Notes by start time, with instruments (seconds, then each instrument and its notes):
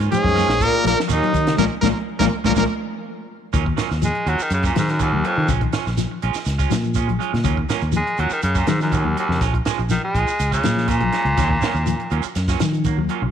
0.00 clean electric guitar A#3 F4, closed hi-hat, shekere
0.10 bass trombone G#2, clean electric guitar F3, trumpet G#4, muted clean electric guitar stroke, closed hi-hat, high conga, shekere
0.15 tenor saxophone C#4
0.24 fingered electric bass F#2, muted clean electric guitar stroke, kick, shekere
0.34 clean electric guitar F#3 A#3 C#4 F4, open hi-hat, high conga, low conga
0.39 shekere
0.48 fingered electric bass A#1, muted clean electric guitar stroke, snare, shekere
0.60 bass trombone A#2, tenor saxophone A#3, trumpet A#4, kick, closed hi-hat, shekere
0.74 shekere
0.84 fingered electric bass A#1, bass trombone A#2, clean electric guitar F3, trumpet A#4, snare, closed hi-hat, high conga, shekere
0.90 tenor saxophone A#3
0.97 clean electric guitar F3, snare, shekere
1.07 fingered electric bass D#2, clean electric guitar F#3 A#3 C#4 F4, closed hi-hat, shekere
1.13 bass trombone D#2, tenor saxophone D#3, trumpet D#4
1.23 clean electric guitar F#3, shekere
1.32 fingered electric bass D#3, muted clean electric guitar stroke, kick, closed hi-hat, shekere
1.47 clean electric guitar C#3, muted clean electric guitar stroke, snare, closed hi-hat, shekere
1.57 fingered electric bass A#1, bass trombone A#2, clean electric guitar F3 G#3 A#3 C#4 F4, tenor saxophone A#3, trumpet A#4, kick, snare, high conga, shekere
1.81 fingered electric bass A#1, bass trombone A#2, clean electric guitar F3 G#3 A#3 C#4 F4, tenor saxophone A#3, trumpet A#4, kick, snare, high conga, shekere
2.19 fingered electric bass A#1, bass trombone A#2, clean electric guitar F3 G#3 A#3 C#4 F4, tenor saxophone A#3, trumpet A#4, kick, snare, high conga, shekere
2.44 fingered electric bass A#1, bass trombone A#2, clean electric guitar F3 G#3 A#3 C#4 F4, tenor saxophone A#3, trumpet A#4, kick, snare, high conga, shekere
2.55 fingered electric bass A#1, bass trombone A#2, clean electric guitar F3 G#3 A#3 C#4 F4, tenor saxophone A#3, trumpet A#4, kick, snare, high conga, shekere
3.53 fingered electric bass D#2, clean electric guitar C#3 F#3 A#3 C#4 F4, kick, closed hi-hat, shekere
3.65 clean electric guitar D#3, muted clean electric guitar stroke, kick
3.77 clean electric guitar F#3 A#3 C#4 F4, snare, closed hi-hat, shekere
3.90 fingered electric bass D#2, muted clean electric guitar stroke, snare, shekere
4.02 clean electric guitar F3, baritone saxophone G#3, closed hi-hat, shekere
4.15 muted clean electric guitar stroke, closed hi-hat
4.25 fingered electric bass D#2, clean electric guitar F#3 A#3 C#4 F4, baritone saxophone F#3, closed hi-hat, shekere
4.39 baritone saxophone D#3, muted clean electric guitar stroke, muted fingered electric bass stroke, closed hi-hat, shekere
4.50 fingered electric bass F#2, baritone saxophone C#3, muted clean electric guitar stroke, closed hi-hat, shekere
4.63 baritone saxophone A#2, clean electric guitar F#3 A#3 C#4 F4, kick, closed hi-hat, shekere
4.74 fingered electric bass D#3, clean electric guitar F#3, muted clean electric guitar stroke, snare, closed hi-hat, shekere
4.79 baritone saxophone G#2
4.88 baritone saxophone F#2, snare, closed hi-hat, shekere
4.99 baritone saxophone D#2, clean electric guitar F#3 A#3 C#4 F4, kick, closed hi-hat, shekere
5.11 fingered electric bass D#2, clean electric guitar F#3, muted clean electric guitar stroke
5.24 baritone saxophone F2, clean electric guitar F#3 A#3 C#4 F4, closed hi-hat, shekere
5.36 clean electric guitar C#3, fingered electric bass D#3, muted clean electric guitar stroke
5.48 fingered electric bass A#1, clean electric guitar C#3 G#3 C#4 F4, kick, closed hi-hat, shekere
5.61 clean electric guitar D#3, muted clean electric guitar stroke, kick, closed hi-hat
5.73 clean electric guitar C#4 F4, snare, closed hi-hat, shekere
5.86 fingered electric bass A#1, muted clean electric guitar stroke, snare, shekere
5.97 clean electric guitar F3, snare, closed hi-hat, shekere
6.11 muted clean electric guitar stroke
6.22 fingered electric bass A#1, clean electric guitar G#3 C#4 F4, closed hi-hat, shekere
6.34 muted fingered electric bass stroke, muted clean electric guitar stroke, snare, shekere
6.45 fingered electric bass C#2, muted clean electric guitar stroke, snare, closed hi-hat, shekere
6.58 clean electric guitar G#3 C#4 F4, kick, closed hi-hat, shekere
6.70 fingered electric bass A#2, clean electric guitar F#3, muted clean electric guitar stroke, snare, closed hi-hat, shekere
6.83 clean electric guitar F3, shekere
6.94 clean electric guitar G#3 C#4 F4, kick, closed hi-hat, shekere
7.08 fingered electric bass A#1, clean electric guitar F#3, muted clean electric guitar stroke, closed hi-hat
7.19 clean electric guitar G#3 C#4 F4, closed hi-hat, shekere
7.33 fingered electric bass A#2, clean electric guitar C#3, muted clean electric guitar stroke, snare, closed hi-hat
7.44 fingered electric bass D#2, clean electric guitar C#3 F#3 A#3 C#4 F4, kick, closed hi-hat, shekere
7.56 clean electric guitar D#3, muted clean electric guitar stroke, kick
7.69 clean electric guitar F#3 A#3 C#4 F4, snare, closed hi-hat, shekere
7.81 fingered electric bass D#2, muted clean electric guitar stroke, shekere
7.92 clean electric guitar F3, closed hi-hat, shekere
7.96 baritone saxophone G#3
8.07 muted clean electric guitar stroke, closed hi-hat
8.17 fingered electric bass D#2, clean electric guitar F#3 A#3 C#4 F4, baritone saxophone F#3, closed hi-hat, shekere
8.30 baritone saxophone D#3, muted clean electric guitar stroke, closed hi-hat, shekere
8.42 fingered electric bass F#2, baritone saxophone C#3, muted clean electric guitar stroke, closed hi-hat, shekere
8.55 baritone saxophone A#2, clean electric guitar F#3 A#3 C#4 F4, kick, closed hi-hat, shekere
8.67 baritone saxophone G#2, fingered electric bass D#3, clean electric guitar F#3, muted clean electric guitar stroke, snare, closed hi-hat, shekere
8.80 baritone saxophone F#2, clean electric guitar F3, snare, closed hi-hat, shekere
8.92 baritone saxophone D#2, clean electric guitar F#3 A#3 C#4 F4, kick, closed hi-hat, shekere
9.04 fingered electric bass D#2, clean electric guitar F#3, muted clean electric guitar stroke
9.17 baritone saxophone D#2, clean electric guitar F#3 A#3 C#4, closed hi-hat, shekere
9.29 fingered electric bass F2, clean electric guitar C#3, muted clean electric guitar stroke, snare
9.41 fingered electric bass A#1, clean electric guitar F3 G#3 C#4 F4, muted clean electric guitar stroke, kick, snare, closed hi-hat, shekere
9.54 muted clean electric guitar stroke, kick, closed hi-hat
9.65 clean electric guitar F3 G#3 C#4 F4, snare, closed hi-hat, shekere
9.78 fingered electric bass A#1, muted clean electric guitar stroke, shekere
9.90 baritone saxophone D#3, clean electric guitar F3, snare, closed hi-hat, shekere
10.03 baritone saxophone G#3, muted clean electric guitar stroke
10.14 fingered electric bass A#1, clean electric guitar F3 G#3 F4, muted clean electric guitar stroke, kick, closed hi-hat, shekere
10.27 muted clean electric guitar stroke, muted fingered electric bass stroke, shekere
10.39 fingered electric bass C#2, muted clean electric guitar stroke, closed hi-hat, shekere
10.51 baritone saxophone C#3, clean electric guitar F3 G#3 C#4 F4, kick, closed hi-hat, shekere
10.63 fingered electric bass A#2, clean electric guitar F#3, muted clean electric guitar stroke, snare, closed hi-hat, shekere
10.77 clean electric guitar F3, snare, shekere
10.87 baritone saxophone A#2, clean electric guitar F3 C#4 F4, muted clean electric guitar stroke, kick, closed hi-hat, shekere
11.00 fingered electric bass A#1, clean electric guitar F#3, muted clean electric guitar stroke, closed hi-hat
11.12 clean electric guitar F3 G#3 C#4, muted clean electric guitar stroke, snare, closed hi-hat, shekere
11.25 fingered electric bass C#2, clean electric guitar C#3, muted clean electric guitar stroke, closed hi-hat
11.37 fingered electric bass D#2, clean electric guitar C#3 F#3 A#3 C#4 F4, kick, snare, closed hi-hat, shekere
11.49 clean electric guitar D#3, muted clean electric guitar stroke, kick
11.62 clean electric guitar F#3 A#3 C#4 F4, snare, closed hi-hat, shekere
11.74 fingered electric bass D#2, muted clean electric guitar stroke, shekere
11.86 clean electric guitar F3, closed hi-hat, shekere
12.00 muted clean electric guitar stroke, closed hi-hat
12.10 fingered electric bass D#2, clean electric guitar F#3 A#3 C#4 F4, closed hi-hat, shekere
12.23 muted clean electric guitar stroke, muted fingered electric bass stroke, closed hi-hat, shekere
12.35 fingered electric bass F#2, muted clean electric guitar stroke, snare, closed hi-hat, shekere
12.48 clean electric guitar F#3 A#3 C#4 F4, kick, snare, closed hi-hat, shekere
12.60 fingered electric bass D#3, clean electric guitar F#3, muted clean electric guitar stroke, snare, closed hi-hat, shekere
12.72 clean electric guitar F3, closed hi-hat, shekere
12.85 clean electric guitar F#3 A#3, muted clean electric guitar stroke, kick, closed hi-hat, shekere
12.98 fingered electric bass D#2, clean electric guitar F#3, muted clean electric guitar stroke
13.09 clean electric guitar F#3 A#3 C#4 F4, closed hi-hat, shekere
13.22 fingered electric bass B1, clean electric guitar C#3, muted clean electric guitar stroke